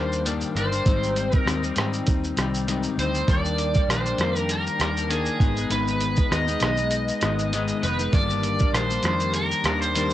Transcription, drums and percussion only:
0.12 shaker
0.26 closed hi-hat, shaker
0.41 shaker
0.56 closed hi-hat, shaker
0.72 shaker
0.86 kick, closed hi-hat, shaker
1.03 shaker
1.16 closed hi-hat, shaker
1.32 kick, shaker
1.47 cross-stick, closed hi-hat, shaker
1.64 shaker
1.76 cross-stick, closed hi-hat, shaker
1.93 shaker
2.07 kick, closed hi-hat, shaker
2.24 shaker
2.37 cross-stick, closed hi-hat, shaker
2.54 shaker
2.68 closed hi-hat, shaker
2.83 shaker
2.99 closed hi-hat, shaker
3.15 shaker
3.28 kick, closed hi-hat, shaker
3.45 shaker
3.58 closed hi-hat, shaker
3.74 kick, shaker
3.90 cross-stick, closed hi-hat, shaker
4.06 shaker
4.18 cross-stick, closed hi-hat, shaker
4.36 shaker
4.49 closed hi-hat, shaker
4.67 shaker
4.80 cross-stick, closed hi-hat, shaker
4.97 shaker
5.11 closed hi-hat, shaker
5.26 shaker
5.40 kick, closed hi-hat, shaker
5.57 shaker
5.70 closed hi-hat, shaker
5.88 shaker
6.00 closed hi-hat, shaker
6.16 kick, shaker
6.32 cross-stick, closed hi-hat, shaker
6.48 shaker
6.60 cross-stick, closed hi-hat, shaker
6.77 shaker
6.91 closed hi-hat, shaker
7.08 shaker
7.21 cross-stick, closed hi-hat, shaker
7.39 shaker
7.53 closed hi-hat, shaker
7.68 shaker
7.83 closed hi-hat, shaker
7.99 shaker
8.13 kick, closed hi-hat, shaker
8.30 shaker
8.43 closed hi-hat, shaker
8.59 kick, shaker
8.74 cross-stick, closed hi-hat, shaker
8.90 shaker
9.03 cross-stick, closed hi-hat, shaker
9.20 shaker
9.34 closed hi-hat, shaker
9.51 shaker
9.64 cross-stick, closed hi-hat, shaker
9.82 shaker
9.95 closed hi-hat, shaker
10.10 shaker

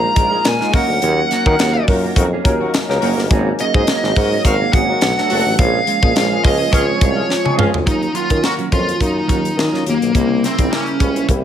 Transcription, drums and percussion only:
0.16 kick, closed hi-hat
0.45 snare, closed hi-hat
0.61 snare
0.73 kick, open hi-hat
1.02 closed hi-hat
1.31 snare, closed hi-hat
1.46 kick
1.59 snare, closed hi-hat
1.88 kick, open hi-hat
2.16 kick, closed hi-hat
2.45 kick, closed hi-hat
2.74 snare, closed hi-hat
2.90 snare
3.02 open hi-hat
3.18 snare
3.31 kick, closed hi-hat
3.59 closed hi-hat
3.74 kick
3.87 snare, closed hi-hat
4.04 snare
4.16 kick, open hi-hat
4.45 kick, closed hi-hat
4.73 kick, closed hi-hat
5.01 snare, closed hi-hat
5.18 snare
5.30 open hi-hat
5.59 kick, closed hi-hat
5.87 closed hi-hat
6.03 kick
6.16 snare, closed hi-hat
6.44 kick, open hi-hat
6.73 kick, closed hi-hat
7.01 kick, closed hi-hat
7.30 snare
7.46 high tom
7.59 mid tom
7.74 floor tom
7.87 kick, closed hi-hat
8.03 closed hi-hat
8.15 closed hi-hat
8.30 kick, closed hi-hat
8.44 snare
8.59 closed hi-hat
8.72 kick, closed hi-hat
8.88 closed hi-hat
9.01 kick, closed hi-hat
9.29 kick, closed hi-hat
9.45 closed hi-hat
9.59 snare
9.74 snare
9.86 closed hi-hat
10.02 closed hi-hat
10.15 kick, closed hi-hat
10.44 snare, closed hi-hat
10.58 kick, closed hi-hat
10.73 snare
10.87 closed hi-hat
11.00 kick, closed hi-hat
11.16 closed hi-hat
11.29 kick, closed hi-hat

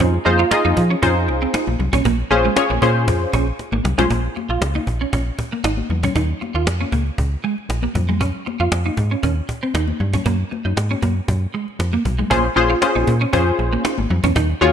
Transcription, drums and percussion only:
0.00 cajon bass
0.14 cajon slap
0.26 cajon slap, high conga
0.40 cajon slap
0.51 cajon slap
0.65 cajon slap, high conga
0.77 cajon bass, muted conga
0.91 cajon slap
1.03 cajon bass
1.16 cajon slap
1.29 cajon slap, muted conga
1.42 cajon slap
1.54 cajon slap
1.67 cajon slap, high conga
1.80 muted conga, low conga
1.93 cajon bass, high conga, low conga
2.05 cajon bass, muted conga
2.19 cajon slap
2.31 cajon slap, high conga
2.45 cajon slap
2.56 cajon slap, muted conga
2.70 cajon slap, high conga
2.82 cajon bass
2.96 cajon slap
3.08 cajon bass, muted conga
3.21 cajon slap
3.33 cajon bass
3.48 cajon slap
3.59 cajon slap, muted conga
3.72 cajon slap, high conga
3.85 cajon slap, muted conga, low conga
3.99 cajon slap, high conga, low conga
4.10 cajon bass, muted conga
4.25 cajon slap
4.36 cajon slap, muted conga, high conga
4.50 cajon slap
4.62 cajon slap
4.75 cajon slap, high conga
4.87 cajon bass, muted conga
5.01 cajon slap
5.13 cajon bass
5.27 cajon slap
5.39 cajon bass, muted conga
5.53 cajon slap
5.64 cajon slap
5.77 cajon slap, high conga
5.90 cajon slap, low conga
6.03 cajon bass, high conga, low conga
6.16 cajon bass
6.30 cajon slap
6.41 cajon slap, muted conga, high conga
6.55 cajon slap
6.67 cajon slap, muted conga
6.80 cajon slap, high conga
6.92 cajon bass, muted conga
7.07 cajon slap
7.18 cajon bass
7.32 cajon slap
7.44 cajon slap
7.58 cajon slap
7.70 cajon slap
7.82 cajon slap, high conga
7.95 cajon bass, low conga
8.09 cajon slap, high conga, low conga
8.20 cajon bass, muted conga
8.35 cajon slap
8.46 cajon slap, muted conga, high conga
8.60 cajon slap
8.72 cajon slap
8.85 cajon slap, high conga
8.97 cajon bass, muted conga
9.11 cajon slap
9.23 cajon bass
9.37 cajon slap
9.49 cajon bass
9.63 cajon slap
9.75 cajon slap
9.88 cajon slap, high conga
10.00 cajon slap, muted conga, low conga
10.13 cajon bass, high conga, low conga
10.26 cajon bass
10.40 cajon slap
10.51 cajon slap, high conga
10.66 cajon slap
10.77 cajon slap, muted conga
10.91 cajon slap, high conga
11.03 cajon bass, muted conga
11.17 cajon slap
11.28 cajon bass, muted conga
11.42 cajon slap
11.54 cajon slap
11.68 cajon slap
11.80 cajon slap
11.93 cajon slap, high conga
12.05 cajon bass, muted conga, low conga
12.19 cajon slap, high conga, low conga
12.31 cajon bass
12.45 cajon slap
12.56 cajon slap, high conga
12.71 cajon slap
12.82 cajon slap, muted conga
12.96 cajon slap, high conga
13.07 cajon bass, muted conga
13.21 cajon slap
13.33 cajon bass, muted conga
13.47 cajon slap
13.59 cajon slap, muted conga
13.73 cajon slap
13.85 cajon slap
13.98 cajon slap, high conga
14.10 muted conga, low conga
14.24 cajon bass, high conga, low conga
14.35 cajon bass, muted conga
14.50 cajon slap
14.61 cajon slap, high conga

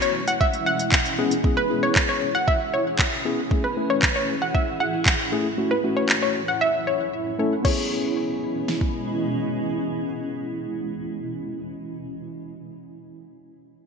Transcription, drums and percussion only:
0.02 closed hi-hat
0.28 closed hi-hat
0.41 kick
0.54 closed hi-hat
0.79 closed hi-hat
0.92 kick, clap
1.06 closed hi-hat
1.31 closed hi-hat
1.44 kick
1.96 kick, clap
2.48 kick
2.99 kick, clap
3.51 kick
4.02 kick, clap
4.55 kick
5.06 kick, clap
6.09 clap
7.65 kick, crash
8.68 snare
8.81 kick

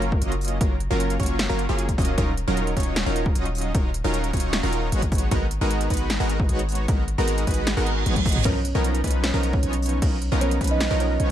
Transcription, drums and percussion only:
0.02 closed hi-hat
0.12 kick
0.22 closed hi-hat
0.32 closed hi-hat
0.41 closed hi-hat, open hi-hat
0.48 closed hi-hat
0.61 kick, closed hi-hat
0.80 closed hi-hat
1.00 closed hi-hat
1.10 closed hi-hat
1.20 kick, closed hi-hat
1.23 closed hi-hat
1.26 closed hi-hat
1.39 snare, closed hi-hat
1.59 closed hi-hat
1.78 closed hi-hat
1.89 kick, closed hi-hat
1.98 kick, closed hi-hat, open hi-hat
2.05 closed hi-hat
2.18 kick, closed hi-hat
2.37 closed hi-hat
2.57 closed hi-hat
2.67 closed hi-hat
2.77 kick, closed hi-hat
2.80 closed hi-hat
2.83 closed hi-hat
2.96 snare, closed hi-hat
3.16 closed hi-hat
3.26 kick
3.35 closed hi-hat
3.45 closed hi-hat
3.55 closed hi-hat, open hi-hat
3.61 closed hi-hat
3.75 kick, closed hi-hat
3.94 closed hi-hat
4.14 closed hi-hat
4.24 closed hi-hat
4.33 kick, closed hi-hat
4.37 closed hi-hat
4.40 closed hi-hat
4.53 snare, closed hi-hat
4.73 closed hi-hat
4.92 closed hi-hat
5.02 kick, closed hi-hat
5.12 kick, closed hi-hat, open hi-hat
5.18 closed hi-hat
5.31 kick, closed hi-hat
5.51 closed hi-hat
5.71 closed hi-hat
5.81 closed hi-hat
5.90 kick, closed hi-hat
5.94 closed hi-hat
5.97 closed hi-hat
6.10 snare, closed hi-hat
6.29 closed hi-hat
6.40 kick
6.49 closed hi-hat
6.59 closed hi-hat
6.69 closed hi-hat, open hi-hat
6.75 closed hi-hat
6.88 kick, closed hi-hat
7.08 closed hi-hat
7.28 closed hi-hat
7.38 closed hi-hat
7.47 kick, closed hi-hat
7.51 closed hi-hat
7.54 closed hi-hat
7.67 snare, closed hi-hat
7.87 closed hi-hat
8.06 closed hi-hat, high tom
8.16 kick, closed hi-hat, high tom
8.26 kick, closed hi-hat, open hi-hat
8.32 closed hi-hat, mid tom
8.45 kick, closed hi-hat, crash
8.65 closed hi-hat
8.84 closed hi-hat
8.95 closed hi-hat
9.04 kick, closed hi-hat
9.07 closed hi-hat
9.11 closed hi-hat
9.24 snare, closed hi-hat, crash
9.43 closed hi-hat
9.53 kick
9.63 closed hi-hat
9.73 closed hi-hat
9.82 closed hi-hat, open hi-hat
9.89 closed hi-hat
10.02 kick, closed hi-hat, crash
10.22 closed hi-hat
10.41 closed hi-hat
10.51 closed hi-hat
10.61 kick, closed hi-hat
10.64 closed hi-hat
10.67 closed hi-hat
10.80 snare, closed hi-hat, crash
11.00 closed hi-hat
11.20 closed hi-hat

